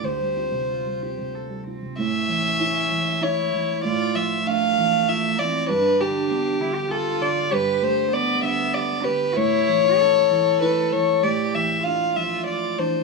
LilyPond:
<<
  \new Staff \with { instrumentName = "Violin" } { \time 3/4 \key d \dorian \tempo 4 = 97 c''2 r4 | e''2 cis''4 | d''8 e''8 f''4 e''8 d''8 | b'8 g'4. a'8 d''8 |
b'8 c''8 d''8 e''8 d''8 b'8 | cis''2 b'8 cis''8 | d''8 e''8 f''8 e''8 d''8 c''8 | }
  \new Staff \with { instrumentName = "Cello" } { \time 3/4 \key d \dorian g'4 f'8 g'8 a'8 c'8 | cis'2 e'4 | f'4 a4. c'8 | d'4. e'16 g'16 f'4 |
g'4 b4. g'8 | e'4 a'2 | g'4 f'4. d'8 | }
  \new Staff \with { instrumentName = "Felt piano" } { \time 3/4 \key d \dorian c''2 r4 | r2. | r2. | r2. |
r2. | r2. | r2. | }
  \new Staff \with { instrumentName = "Felt piano" } { \clef bass \time 3/4 \key d \dorian d,16 g16 <c' f'>16 c8 g16 <c' f'>16 c8 g16 <c' f'>16 c16 | a,8 e8 e'8 e8 e'8 e8 | a,8 f8 d'8 e8 f'8 e8 | g,8 d8 b8 d8 g'8 d8 |
g,8 a8 b8 d8 g'8 d8 | a,8 e8 cis'8 e8 e'8 e8 | a,8 e8 d'8 f8 e''8 e8 | }
>>